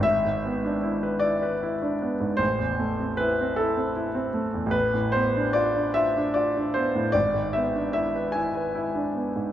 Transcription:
\new Staff \with { instrumentName = "Grand piano" } { \time 12/8 \key e \phrygian \tempo 4. = 50 << { e''4. d''4. c''4 b'8 a'8 r4 | b'8 c''8 d''8 e''8 d''8 c''8 d''8 e''8 e''8 gis''4. | } \\ { gis,,16 gis,16 b16 d'16 e'16 b'16 e'16 b'16 e'16 d'16 b16 gis,16 a,,16 e,16 a16 c'16 e'16 c'16 e'16 c'16 e'16 c'16 a16 e,16 | a,,16 a,16 b16 d'16 f'16 d'16 f'16 d'16 f'16 d'16 b16 a,16 gis,,16 gis,16 b16 d'16 e'16 b'16 e'16 b'16 e'16 d'16 b16 gis,16 | } >> }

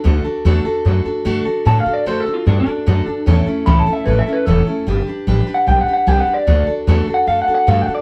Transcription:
<<
  \new Staff \with { instrumentName = "Clean electric guitar" } { \time 4/4 \key d \major \tempo 4 = 150 d'8 r2. r8 | \tuplet 3/2 { a''8 f''8 d''8 c''8 a'8 f'8 d'8 d'4~ } d'4~ | d'8 r8 \tuplet 3/2 { b''8 a''8 e''8 b'8 e''8 b'8 } a'8 r8 | r4 \tuplet 3/2 { r4 fis''8 g''8 fis''8 fis''8 g''8 fis''8 d''8~ } |
d''8 r8 \tuplet 3/2 { r4 fis''8 f''8 fis''8 fis''8 f''8 fis''8 d''8 } | }
  \new Staff \with { instrumentName = "Steel-string acoustic guitar" } { \time 4/4 \key d \major <d a d' fis' a'>8 <d' fis' a'>8 <d a d' fis' a'>8 <d' fis' a'>8 <a d' fis' a'>8 <d' fis' a'>8 <d a d' fis' a'>8 <d' fis' a'>8 | <d a d' fis' a'>8 <d' fis' a'>8 <d a d' fis' a'>8 <d' fis' a'>8 <a d' fis' a'>8 <d' fis' a'>8 <d a d' fis' a'>8 <d' fis' a'>8 | <a, e a cis' e' a'>8 <a cis' e' a'>8 <a, e a cis' e' a'>8 <a cis' e' a'>8 <a cis' e' a'>8 <a cis' e' a'>8 <a, e a cis' e' a'>8 <a cis' e' a'>8 | <g d' g' b'>8 <d' g' b'>8 <g d' g' b'>8 <d' g' b'>8 <g d' g' b'>8 <d' g' b'>8 <g d' g' b'>8 <d' g' b'>8 |
<d a d' fis' a'>8 <d' fis' a'>8 <d a d' fis' a'>8 <d' fis' a'>8 <a d' fis' a'>8 <d' fis' a'>8 <d a d' fis' a'>8 <d' fis' a'>8 | }
  \new Staff \with { instrumentName = "Upright bass" } { \clef bass \time 4/4 \key d \major d,8 r8 e,8 r8 fis,8 r8 g,8 r8 | a,8 r8 fis,8 r8 g,8 r8 fis,8 r8 | e,8 r8 cis,8 r8 a,,8 r8 e,,8 r8 | g,,8 r8 a,,8 r8 b,,8 r8 c,8 r8 |
d,8 r8 e,8 r8 fis,8 r8 g,8 r8 | }
>>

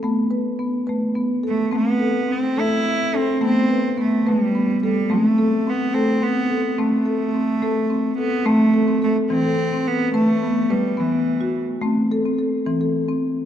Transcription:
<<
  \new Staff \with { instrumentName = "Marimba" } { \time 6/8 \key a \minor \tempo 4. = 71 b8 b'8 b8 b'8 b8 a'8 | c'8 a'8 c'8 a'8 c'8 a'8 | b8 b'8 b8 b'8 b8 a'8 | c'8 a'8 c'8 a'8 c'8 a'8 |
c'8 a'8 c'8 a'8 c'8 a'8 | c'8 a'16 c'16 a'8 c'16 a'8 c'8 r16 | b'8 b8 b'8 r16 b8 fis'8 r16 | c'8 a'16 c'16 a'8 c'16 a'8 c'8 r16 | }
  \new Staff \with { instrumentName = "Marimba" } { \time 6/8 \key a \minor a4. a8 r4 | a4. a8 r4 | a4. a8 r4 | a4. a8 r4 |
a4. a8 r4 | a4. e4. | a4. b4. | a4. e4. | }
  \new Staff \with { instrumentName = "Cello" } { \time 6/8 \key a \minor r2 r8 a8 | b4 c'8 e'4 c'8 | c'4 a8 g4 g8 | a4 b8 c'8 b4 |
a2~ a8 b8 | a4 a8 c'4 b8 | a4 g8 e4 r8 | r2. | }
>>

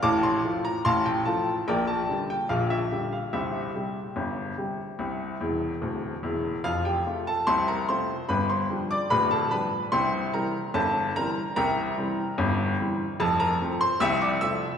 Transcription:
<<
  \new Staff \with { instrumentName = "Grand piano" } { \time 2/4 \key f \major \tempo 4 = 73 <f'' a'' d'''>16 c'''8 bes''16 <f'' a'' c'''>16 g''16 a''8 | <bes' d'' g''>16 a''8 g''16 f''16 e''8 f''16 | <g' c'' e''>2~ | <g' c'' e''>4. r8 |
<f' f''>16 <g' g''>8 <a' a''>16 <c'' c'''>16 <bes' bes''>16 <c'' c'''>8 | <b' b''>16 <c'' c'''>8 <d'' d'''>16 <b' b''>16 <a' a''>16 <b' b''>8 | <c'' g'' c'''>8 <bes' bes''>8 <a' a''>8 <bes' bes''>8 | <bes' g'' bes''>2 |
<a' a''>16 <bes' bes''>8 <c'' c'''>16 <e'' e'''>16 <d'' d'''>16 <e'' e'''>8 | }
  \new Staff \with { instrumentName = "Grand piano" } { \clef bass \time 2/4 \key f \major <a,, a,>8 <f a f'>8 <a,, a,>8 <f a f'>8 | <bes,, bes,>8 <d g g'>8 <bes,, bes,>8 <d g g'>8 | <c, c>8 <c g g'>8 <g,, g,>8 <c g g'>8 | <c, c>8 <e,, e,>8 <d,, d,>8 <e,, e,>8 |
<f,, f,>8 <c a f'>8 <c, c>8 <c a f'>8 | <g,, g,>8 <f g d'>8 <d,, d,>8 <f g d'>8 | <c, c>8 <e g c'>8 <g,, g,>8 <e g c'>8 | <c, c>8 <e g c'>8 <g,, g,>8 <e g c'>8 |
<f,, f,>8 <f a c'>8 <c, c>8 <f a c'>8 | }
>>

